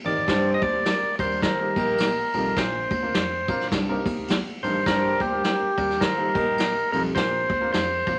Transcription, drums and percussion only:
0.05 ride, low conga
0.27 kick, snare, ride, muted conga, low conga
0.62 kick, ride, high conga
0.85 snare, ride
1.03 muted conga
1.19 kick, ride
1.31 ride
1.42 kick, snare, ride, muted conga
1.76 kick, ride, high conga
1.98 snare, ride, high conga
2.16 ride
2.33 ride, low conga
2.56 kick, snare, ride, muted conga, low conga
2.74 muted conga
2.91 kick, ride, high conga
3.14 snare, ride
3.32 muted conga
3.48 kick, ride
3.61 snare, ride
3.72 kick, snare, ride, muted conga
4.06 kick, ride, high conga
4.28 snare, ride, muted conga, high conga
4.46 ride, muted conga
4.63 ride, low conga
4.86 kick, snare, ride, low conga
5.20 kick, ride, high conga
5.44 snare, ride
5.61 muted conga
5.78 kick, ride
5.90 snare, ride
6.01 kick, snare, ride
6.35 kick, ride, high conga
6.58 snare, ride, high conga
6.74 ride, muted conga
6.92 ride, low conga
7.15 kick, snare, ride, muted conga, low conga
7.32 muted conga
7.50 kick, ride, high conga
7.73 snare, ride, muted conga
7.90 muted conga
8.07 kick, ride, low conga

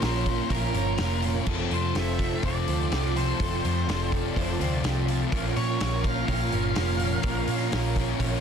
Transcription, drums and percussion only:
0.02 snare, open hi-hat
0.26 kick, open hi-hat
0.50 kick, open hi-hat
0.74 open hi-hat
0.98 snare, open hi-hat
1.22 open hi-hat
1.47 kick, crash
1.71 open hi-hat
1.95 snare, open hi-hat
2.19 kick, open hi-hat
2.43 kick, open hi-hat
2.68 open hi-hat
2.92 snare, open hi-hat
3.17 open hi-hat
3.40 kick, open hi-hat
3.65 open hi-hat
3.89 snare, open hi-hat
4.12 kick, open hi-hat
4.36 kick, open hi-hat
4.61 open hi-hat
4.84 snare, open hi-hat
5.08 open hi-hat
5.32 kick, open hi-hat
5.57 open hi-hat
5.80 snare, open hi-hat
6.04 kick, open hi-hat
6.28 kick, open hi-hat
6.52 open hi-hat
6.76 snare, open hi-hat
6.99 open hi-hat
7.23 kick, open hi-hat
7.47 open hi-hat
7.72 snare, open hi-hat
7.96 kick, open hi-hat
8.20 kick, open hi-hat

